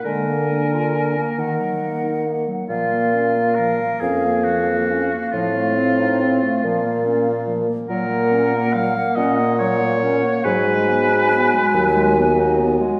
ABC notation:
X:1
M:6/8
L:1/16
Q:3/8=46
K:Bbphr
V:1 name="Flute"
a6 g6 | f12- | f8- f2 z2 | [K:F#] f12 |
g12 |]
V:2 name="Oboe"
B8- B2 z2 | F4 B2 A2 G4 | F8- F2 z2 | [K:F#] A4 e2 d2 c4 |
B8- B2 z2 |]
V:3 name="Clarinet"
A, B, =D F D B, E, G, B, E B, G, | F, B, D B, F, B, D B, F, B, D B, | F, =A, =C E C A, F, B, D B, F, B, | [K:F#] F, A, C A, F, A, C A, F, A, C A, |
F, G, B, D B, G, F, G, B, D B, G, |]
V:4 name="French horn"
B,12 | B,8- B,2 z2 | =C6 B,6- | [K:F#] _B,12 |
F,12 |]
V:5 name="Bassoon" clef=bass
=D,6 E,6 | B,,6 F,,6 | =A,,6 B,,6 | [K:F#] A,,6 A,,6 |
G,,6 D,,6 |]